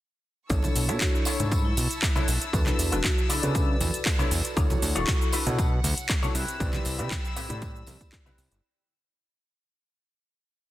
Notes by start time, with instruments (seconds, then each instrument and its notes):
0.50 analog synth bass B1, tine electric piano D4 E4 A4 C#5, string section E4 A5 C#6 E6, muted clean electric guitar stroke, kick, closed hi-hat, tambourine, cabasa
0.63 muted clean electric guitar stroke, tambourine, high conga, low conga, cabasa
0.76 analog synth bass B1, open hi-hat, tambourine, cabasa
0.88 analog synth bass B2, tine electric piano D4 E4 A4 C#5, clean electric guitar D4 E4 A4 C#5, vibraphone F#4, closed hi-hat, tambourine, cabasa
1.01 kick, clap, closed hi-hat, tambourine, high conga, cabasa
1.14 muted clean electric guitar stroke, cabasa
1.25 clean electric guitar D4 E4 A4 C#5, open hi-hat, tambourine, cabasa
1.39 analog synth bass G#2, tine electric piano D4 E4 A4 C#5, closed hi-hat, tambourine, high conga, cabasa
1.51 kick, closed hi-hat, tambourine, cabasa
1.65 vibraphone E4
1.77 analog synth bass B1, open hi-hat, tambourine, high conga, cabasa
1.91 closed hi-hat, tambourine, cabasa
2.02 muted clean electric guitar stroke, kick, clap, closed hi-hat, tambourine, cabasa
2.15 tine electric piano D4 E4 A4 C#5, clean electric guitar D4 E4 A4 B4, tambourine, high conga, cabasa
2.28 analog synth bass B1, open hi-hat, tambourine, cabasa
2.41 muted clean electric guitar stroke, closed hi-hat, tambourine, cabasa
2.53 analog synth bass E2, tine electric piano D4 F#4 A4 B4, muted clean electric guitar stroke, kick, closed hi-hat, tambourine, cabasa
2.66 vibraphone E4, muted clean electric guitar stroke, clap, tambourine, high conga, low conga, cabasa
2.79 analog synth bass E2, open hi-hat, tambourine, cabasa
2.92 analog synth bass E1, tine electric piano D4 F#4 A4 B4, clean electric guitar D4 E4 A4 B4, vibraphone F#4, closed hi-hat, tambourine, cabasa
3.04 vibraphone F#4, kick, clap, closed hi-hat, tambourine, high conga, cabasa
3.18 muted clean electric guitar stroke, cabasa
3.29 analog synth bass C#3, clean electric guitar D4 E4 A4 D5, open hi-hat, tambourine, cabasa
3.42 analog synth bass C#3, tine electric piano F#4 A4 B4 D5, closed hi-hat, tambourine, high conga, cabasa
3.55 kick, closed hi-hat, tambourine, cabasa
3.80 analog synth bass E2, open hi-hat, tambourine, high conga, low conga, cabasa
3.94 closed hi-hat, tambourine, cabasa
4.05 muted clean electric guitar stroke, kick, clap, closed hi-hat, tambourine, cabasa
4.19 clean electric guitar D4 E4 A4 C#5, tambourine, high conga, cabasa
4.31 analog synth bass E2, open hi-hat, tambourine, cabasa
4.45 muted clean electric guitar stroke, closed hi-hat, tambourine, cabasa
4.56 analog synth bass D2, tine electric piano E4 F#4 A4 C#5, string section F#5, muted clean electric guitar stroke, kick, closed hi-hat, tambourine, cabasa
4.70 muted clean electric guitar stroke, tambourine, high conga, low conga, cabasa
4.82 analog synth bass D2, open hi-hat, tambourine, cabasa
4.95 analog synth bass D1, clean electric guitar D4 F#4 A4 C#5, tine electric piano E4 F#4 A4 C#6, closed hi-hat, tambourine, cabasa
5.07 kick, clap, closed hi-hat, tambourine, high conga, cabasa
5.21 muted clean electric guitar stroke, cabasa
5.33 clean electric guitar D4 F#4 A4 B4, open hi-hat, tambourine, cabasa
5.46 analog synth bass B2, tine electric piano E4 F#4 A4 C#5, closed hi-hat, tambourine, high conga, cabasa
5.58 kick, closed hi-hat, tambourine, cabasa
5.84 analog synth bass D2, open hi-hat, tambourine, high conga, cabasa
5.97 closed hi-hat, tambourine, cabasa
6.09 muted clean electric guitar stroke, kick, clap, closed hi-hat, tambourine, cabasa
6.22 clean electric guitar D4 F#4 A4 C#5, tine electric piano E4 F#4 A4 C#5, tambourine, high conga, cabasa
6.34 analog synth bass C2, string section C4 B5 E6, clean electric guitar C4 E4 G4 B4, open hi-hat, tambourine, cabasa
6.48 closed hi-hat, tambourine, cabasa
6.59 analog synth bass C2, tine electric piano E4 G4 B4 D5, kick, closed hi-hat, tambourine, cabasa
6.73 muted clean electric guitar stroke, clap, tambourine, high conga, low conga, cabasa
6.85 analog synth bass C2, open hi-hat, tambourine, cabasa
6.98 analog synth bass C3, clean electric guitar C4 E4 G4 B4, tine electric piano E4 G4 B4 D5, closed hi-hat, tambourine, cabasa
7.11 kick, clap, closed hi-hat, tambourine, high conga, cabasa
7.24 muted clean electric guitar stroke, cabasa
7.36 analog synth bass A2, clean electric guitar C4 E4 G4 B4, open hi-hat, tambourine, cabasa
7.49 analog synth bass A2, tine electric piano E4 G4 D5 B5, closed hi-hat, tambourine, high conga, cabasa
7.62 kick, closed hi-hat, tambourine, cabasa
7.76 cabasa
7.87 analog synth bass C2, open hi-hat, tambourine, high conga, low conga, cabasa
8.01 kick, closed hi-hat, tambourine, cabasa
8.12 muted clean electric guitar stroke, kick, clap, closed hi-hat, tambourine, cabasa
8.26 clean electric guitar C4 E4 G4 B4, tambourine, high conga, cabasa
8.38 analog synth bass C2, open hi-hat, tambourine, cabasa
8.51 analog synth bass G1, muted clean electric guitar stroke, closed hi-hat, tambourine, cabasa